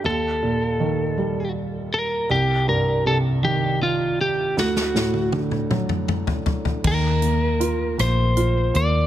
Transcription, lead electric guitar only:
\new Staff \with { instrumentName = "Lead electric guitar" } { \time 6/8 \key ees \lydian \tempo 4. = 53 a'2 r8 bes'8 | g'8 bes'8 a'8 g'8 f'8 g'8 | fis'4 r2 | bes'4. c''4 d''8 | }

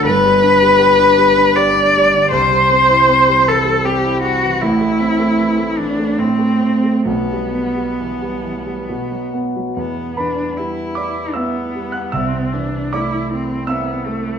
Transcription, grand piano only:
<<
  \new Staff \with { instrumentName = "Grand piano" } { \time 3/4 \key e \minor \tempo 4 = 77 r2. | r2. | r2. | r2. |
r8 <b' b''>4 <d'' d'''>8 <e'' e'''>8. <fis'' fis'''>16 | <e'' e'''>4 <d'' d'''>4 <e'' e'''>4 | }
  \new Staff \with { instrumentName = "Grand piano" } { \clef bass \time 3/4 \key e \minor <g,, g,>16 g16 d'16 g16 g'16 d'16 g16 d'16 g'16 d'16 g16 d16 | <c, c>16 g16 c'16 e'16 c'16 g16 e16 g16 c'16 e'16 g16 e16 | <a,, a,>16 a16 c'16 a16 e16 a16 e16 a16 a,16 a16 c'16 a16 | <b,, b,>16 g16 b16 g16 e16 g16 e16 g16 b,16 fis16 b16 fis16 |
e,8 e8 g8 e'8 b8 g8 | c,8 e8 a8 e'8 c'8 a8 | }
>>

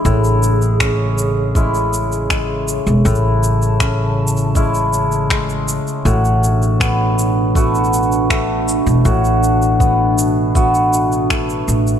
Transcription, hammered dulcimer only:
\new Staff \with { instrumentName = "Hammered dulcimer" } { \time 4/4 \key a \major \tempo 4 = 80 <a, e'>4 cis'4 <gis cis' e'>4 gis4 | <a, e'>4 cis'4 <gis cis' e'>4 gis4 | <a, fis'>4 b4 <a b fis'>4 a4 | <a, fis'>4 b4 <a b fis'>4 a4 | }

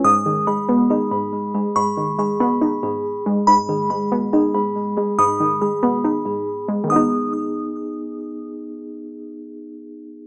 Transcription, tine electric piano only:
\new Staff \with { instrumentName = "Tine electric piano" } { \time 4/4 \key gis \minor \tempo 4 = 140 gis8 gis'8 b''8 gis8 gis'8 b''8 gis8 gis'8 | b''4 gis'8 b''4 gis'4 gis8 | gis8 gis'8 b''8 gis8 gis'8 b''8 gis8 gis'8 | b''4 gis'8 b''4 gis'4 gis8 |
<b dis' gis'>1~ | <b dis' gis'>1 | }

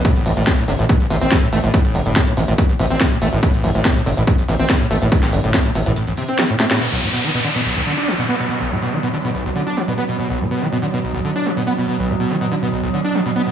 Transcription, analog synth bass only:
\new Staff \with { instrumentName = "Analog synth bass" } { \clef bass \time 4/4 \key b \phrygian \tempo 4 = 142 r8 a,,16 a,,16 r8 g,,16 a,,16 r8 a,,16 a,,16 r8 a,,16 a,,16 | r8 g,,16 g,,16 r8 a,,16 a,,16 r8 a,,16 a,,16 r8 a,,16 a,,16 | r8 a,,16 a,,16 r8 g,,16 a,,16 r8 a,,16 a,,16 r8 a,,16 a,,16 | r8 g,,16 g,,16 r8 a,,16 a,,16 r2 |
r1 | r1 | r1 | r1 | }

